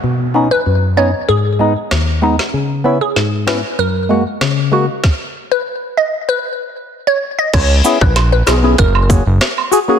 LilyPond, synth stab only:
\new Staff \with { instrumentName = "Synth stab" } { \time 4/4 \key cis \dorian \tempo 4 = 96 << { r8 <b cis' dis'>16 r8. <b cis' dis'>16 r8. <gis b dis'>16 r8. <gis b dis'>16 r16 | r8 <b cis' e'>16 r8. <b cis' e'>16 r8. <gis ais fis'>16 r8. <gis ais fis'>16 r16 | r1 | r8 <b cis' e' gis'>16 r8. <e' gis'>16 <b cis' e' gis'>16 r8 <ais cis' fis' gis'>16 r8. <fis' gis'>16 <ais cis' fis' gis'>16 | } \\ { b,4 fis,4 gis,4 dis,4 | cis4 gis,4 fis,4 cis4 | r1 | r1 | } >> }